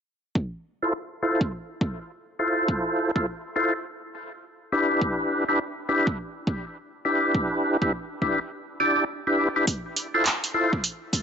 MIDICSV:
0, 0, Header, 1, 3, 480
1, 0, Start_track
1, 0, Tempo, 582524
1, 293, Time_signature, 4, 2, 24, 8
1, 9249, End_track
2, 0, Start_track
2, 0, Title_t, "Tonewheel organ"
2, 0, Program_c, 0, 16
2, 679, Note_on_c, 0, 64, 91
2, 679, Note_on_c, 0, 65, 83
2, 680, Note_on_c, 0, 69, 81
2, 680, Note_on_c, 0, 72, 97
2, 770, Note_off_c, 0, 64, 0
2, 770, Note_off_c, 0, 65, 0
2, 770, Note_off_c, 0, 69, 0
2, 770, Note_off_c, 0, 72, 0
2, 1010, Note_on_c, 0, 65, 77
2, 1010, Note_on_c, 0, 69, 70
2, 1010, Note_on_c, 0, 72, 88
2, 1012, Note_on_c, 0, 64, 78
2, 1158, Note_off_c, 0, 65, 0
2, 1158, Note_off_c, 0, 69, 0
2, 1158, Note_off_c, 0, 72, 0
2, 1159, Note_off_c, 0, 64, 0
2, 1971, Note_on_c, 0, 65, 64
2, 1972, Note_on_c, 0, 64, 67
2, 1972, Note_on_c, 0, 69, 62
2, 1972, Note_on_c, 0, 72, 74
2, 2565, Note_off_c, 0, 65, 0
2, 2566, Note_off_c, 0, 64, 0
2, 2566, Note_off_c, 0, 69, 0
2, 2566, Note_off_c, 0, 72, 0
2, 2600, Note_on_c, 0, 64, 85
2, 2601, Note_on_c, 0, 65, 84
2, 2601, Note_on_c, 0, 69, 80
2, 2601, Note_on_c, 0, 72, 98
2, 2690, Note_off_c, 0, 64, 0
2, 2690, Note_off_c, 0, 65, 0
2, 2690, Note_off_c, 0, 69, 0
2, 2691, Note_off_c, 0, 72, 0
2, 2932, Note_on_c, 0, 65, 74
2, 2932, Note_on_c, 0, 69, 71
2, 2932, Note_on_c, 0, 72, 91
2, 2933, Note_on_c, 0, 64, 78
2, 3079, Note_off_c, 0, 65, 0
2, 3079, Note_off_c, 0, 69, 0
2, 3079, Note_off_c, 0, 72, 0
2, 3080, Note_off_c, 0, 64, 0
2, 3893, Note_on_c, 0, 64, 65
2, 3893, Note_on_c, 0, 67, 63
2, 3893, Note_on_c, 0, 71, 78
2, 3894, Note_on_c, 0, 62, 68
2, 4486, Note_off_c, 0, 64, 0
2, 4486, Note_off_c, 0, 67, 0
2, 4486, Note_off_c, 0, 71, 0
2, 4487, Note_off_c, 0, 62, 0
2, 4520, Note_on_c, 0, 64, 82
2, 4520, Note_on_c, 0, 71, 102
2, 4521, Note_on_c, 0, 62, 91
2, 4521, Note_on_c, 0, 67, 82
2, 4610, Note_off_c, 0, 62, 0
2, 4610, Note_off_c, 0, 64, 0
2, 4610, Note_off_c, 0, 71, 0
2, 4611, Note_off_c, 0, 67, 0
2, 4851, Note_on_c, 0, 62, 82
2, 4851, Note_on_c, 0, 64, 73
2, 4852, Note_on_c, 0, 67, 77
2, 4852, Note_on_c, 0, 71, 96
2, 4999, Note_off_c, 0, 62, 0
2, 4999, Note_off_c, 0, 64, 0
2, 4999, Note_off_c, 0, 67, 0
2, 4999, Note_off_c, 0, 71, 0
2, 5810, Note_on_c, 0, 62, 72
2, 5810, Note_on_c, 0, 67, 65
2, 5810, Note_on_c, 0, 71, 76
2, 5811, Note_on_c, 0, 64, 64
2, 6405, Note_off_c, 0, 62, 0
2, 6405, Note_off_c, 0, 64, 0
2, 6405, Note_off_c, 0, 67, 0
2, 6405, Note_off_c, 0, 71, 0
2, 6442, Note_on_c, 0, 62, 87
2, 6442, Note_on_c, 0, 64, 81
2, 6442, Note_on_c, 0, 67, 81
2, 6442, Note_on_c, 0, 71, 94
2, 6531, Note_off_c, 0, 62, 0
2, 6531, Note_off_c, 0, 64, 0
2, 6531, Note_off_c, 0, 67, 0
2, 6531, Note_off_c, 0, 71, 0
2, 6771, Note_on_c, 0, 64, 78
2, 6771, Note_on_c, 0, 67, 73
2, 6772, Note_on_c, 0, 62, 83
2, 6772, Note_on_c, 0, 71, 91
2, 6919, Note_off_c, 0, 62, 0
2, 6919, Note_off_c, 0, 64, 0
2, 6919, Note_off_c, 0, 67, 0
2, 6919, Note_off_c, 0, 71, 0
2, 7252, Note_on_c, 0, 62, 82
2, 7252, Note_on_c, 0, 67, 74
2, 7253, Note_on_c, 0, 64, 76
2, 7253, Note_on_c, 0, 74, 88
2, 7454, Note_off_c, 0, 62, 0
2, 7454, Note_off_c, 0, 64, 0
2, 7454, Note_off_c, 0, 67, 0
2, 7454, Note_off_c, 0, 74, 0
2, 7638, Note_on_c, 0, 62, 77
2, 7639, Note_on_c, 0, 64, 70
2, 7639, Note_on_c, 0, 67, 77
2, 7639, Note_on_c, 0, 71, 86
2, 7816, Note_off_c, 0, 62, 0
2, 7817, Note_off_c, 0, 64, 0
2, 7817, Note_off_c, 0, 67, 0
2, 7817, Note_off_c, 0, 71, 0
2, 7879, Note_on_c, 0, 62, 77
2, 7879, Note_on_c, 0, 64, 70
2, 7879, Note_on_c, 0, 67, 71
2, 7879, Note_on_c, 0, 71, 83
2, 7960, Note_off_c, 0, 62, 0
2, 7960, Note_off_c, 0, 64, 0
2, 7960, Note_off_c, 0, 67, 0
2, 7960, Note_off_c, 0, 71, 0
2, 8358, Note_on_c, 0, 64, 89
2, 8359, Note_on_c, 0, 65, 82
2, 8359, Note_on_c, 0, 69, 83
2, 8359, Note_on_c, 0, 72, 99
2, 8449, Note_off_c, 0, 64, 0
2, 8449, Note_off_c, 0, 69, 0
2, 8449, Note_off_c, 0, 72, 0
2, 8450, Note_off_c, 0, 65, 0
2, 8687, Note_on_c, 0, 64, 78
2, 8687, Note_on_c, 0, 65, 78
2, 8687, Note_on_c, 0, 69, 75
2, 8689, Note_on_c, 0, 72, 90
2, 8836, Note_off_c, 0, 69, 0
2, 8837, Note_off_c, 0, 64, 0
2, 8837, Note_off_c, 0, 65, 0
2, 8837, Note_off_c, 0, 72, 0
2, 9249, End_track
3, 0, Start_track
3, 0, Title_t, "Drums"
3, 291, Note_on_c, 9, 36, 106
3, 374, Note_off_c, 9, 36, 0
3, 1161, Note_on_c, 9, 36, 99
3, 1244, Note_off_c, 9, 36, 0
3, 1493, Note_on_c, 9, 36, 101
3, 1575, Note_off_c, 9, 36, 0
3, 2212, Note_on_c, 9, 36, 110
3, 2295, Note_off_c, 9, 36, 0
3, 2602, Note_on_c, 9, 36, 94
3, 2684, Note_off_c, 9, 36, 0
3, 4132, Note_on_c, 9, 36, 114
3, 4215, Note_off_c, 9, 36, 0
3, 5002, Note_on_c, 9, 36, 101
3, 5084, Note_off_c, 9, 36, 0
3, 5332, Note_on_c, 9, 36, 104
3, 5415, Note_off_c, 9, 36, 0
3, 6053, Note_on_c, 9, 36, 115
3, 6135, Note_off_c, 9, 36, 0
3, 6441, Note_on_c, 9, 36, 100
3, 6524, Note_off_c, 9, 36, 0
3, 6772, Note_on_c, 9, 36, 58
3, 6854, Note_off_c, 9, 36, 0
3, 7971, Note_on_c, 9, 36, 107
3, 7971, Note_on_c, 9, 42, 70
3, 8053, Note_off_c, 9, 42, 0
3, 8054, Note_off_c, 9, 36, 0
3, 8211, Note_on_c, 9, 42, 56
3, 8293, Note_off_c, 9, 42, 0
3, 8452, Note_on_c, 9, 39, 113
3, 8452, Note_on_c, 9, 42, 70
3, 8534, Note_off_c, 9, 39, 0
3, 8534, Note_off_c, 9, 42, 0
3, 8601, Note_on_c, 9, 42, 57
3, 8683, Note_off_c, 9, 42, 0
3, 8840, Note_on_c, 9, 36, 94
3, 8923, Note_off_c, 9, 36, 0
3, 8930, Note_on_c, 9, 42, 67
3, 9013, Note_off_c, 9, 42, 0
3, 9171, Note_on_c, 9, 36, 98
3, 9172, Note_on_c, 9, 42, 57
3, 9249, Note_off_c, 9, 36, 0
3, 9249, Note_off_c, 9, 42, 0
3, 9249, End_track
0, 0, End_of_file